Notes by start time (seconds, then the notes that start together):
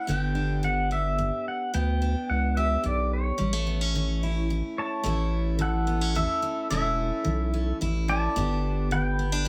0.07 G1 G2 D3 B3 D4 G4 G5
0.35 D4
0.63 D3 F#5
0.91 G4 E5
1.18 G2
1.48 F#5
1.74 D2 G2 B3 G5
2.02 D4
2.30 C#2 F#5
2.57 G4 E5
2.84 B1 G2 D5
3.13 C#5
3.38 A1 A2 G3
3.53 A3
3.67 B3
3.81 C#4
3.95 E3
4.23 E4
4.50 E2
4.78 C#5 A5
5.03 A1 A2 A3 C#4 E4
5.59 E3 A4 F#5
5.87 B3
6.01 C#4
6.15 E2 E4 A4 E5
6.42 C#4
6.70 E1 A2 A3 C#4 E4 A4 E5
7.25 B1 E3
7.54 C#4
7.81 A1 E2 E4
8.08 C#4 D5 A5
8.36 G1 G2 B3 D4 G4
8.91 D3 B4 G5
9.19 B3
9.32 D4
9.45 G2